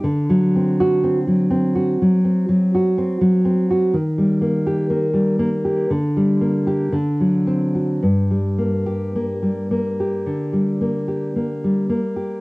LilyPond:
\new Staff \with { instrumentName = "Nylon-string guitar" } { \time 4/4 \key g \minor \tempo 4 = 59 << { r8. fis'8 r2 r8. | r8. g'8 r4. g'16 r8. fis'16 | r8. g'8 r2 r8. | } \\ { d16 fis16 c'8 c'16 fis16 c'16 fis'16 fis16 c'16 fis16 fis'16 c'16 fis16 c'16 fis'16 | ees16 g16 bes8 bes16 g16 bes16 g'16 d16 g16 bes8 d16 fis16 c'8 | g,16 g16 bes8 bes16 g16 bes16 g'16 d16 g16 bes16 g'16 bes16 g16 bes16 g'16 | } >> }